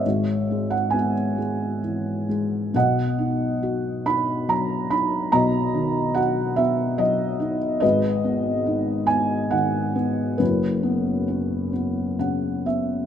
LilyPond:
<<
  \new Staff \with { instrumentName = "Felt piano" } { \time 3/4 \key b \major \tempo 4 = 69 << { e''8. fis''16 gis''4 r4 | fis''4. b''8 ais''8 b''8 | ais''4 fis''8 e''8 dis''8. r16 | dis''4. gis''8 fis''4 |
b'2 fis''8 e''8 | } \\ { cis''4~ cis''16 r4. r16 | dis''4. r4. | dis''4. r4. | b'4. r4. |
e'2 r4 | } >> }
  \new Staff \with { instrumentName = "Felt piano" } { \clef bass \time 3/4 \key b \major <gis,, gis,>8 gis8 b8 gis8 e8 gis8 | <b,, b,>8 dis'8 fis'8 dis'8 fis8 dis'8 | <b,, b,>8 dis8 fis'8 b8 fis8 dis'8 | <gis,, gis,>8 b8 dis'8 b8 dis8 b8 |
<fis,, fis,>8 b8 cis'8 b8 cis8 b8 | }
>>